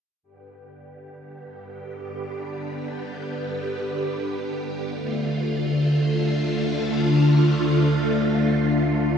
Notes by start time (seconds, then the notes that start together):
0.23 G2 D3 B3 G4
4.94 D2 D3 A3 F4